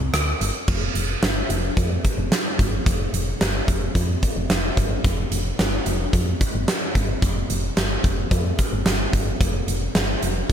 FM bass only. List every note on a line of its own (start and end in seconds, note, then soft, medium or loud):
0.00 0.10 C2 medium
0.14 0.34 D2 medium
0.41 0.51 G1 loud
0.68 0.89 F1 loud
0.95 1.16 F1 medium
1.23 1.43 G1 medium
1.50 1.70 F1 loud
1.77 1.98 F2 medium
2.18 2.28 F1 medium
2.59 2.80 G1 loud
2.86 3.07 F1 loud
3.13 3.34 F1 medium
3.41 3.61 G1 loud
3.68 3.89 F1 medium
3.95 4.16 F2 loud
4.36 4.47 F1 medium
4.50 4.70 F1 medium
4.77 4.98 G1 medium
5.04 5.25 F1 loud
5.32 5.52 F1 medium
5.59 5.80 G1 loud
5.86 6.07 F1 loud
6.13 6.34 F2 loud
6.55 6.65 G1 medium
6.95 7.16 G1 loud
7.22 7.43 F1 loud
7.50 7.71 F1 loud
7.77 7.98 G1 medium
8.04 8.25 F1 medium
8.31 8.52 F2 medium
8.73 8.83 G1 medium
8.86 9.07 G1 medium
9.13 9.34 G1 medium
9.41 9.61 F1 loud
9.68 9.88 F1 medium
9.95 10.16 G1 medium
10.23 10.43 F1 medium
10.49 10.53 F2 loud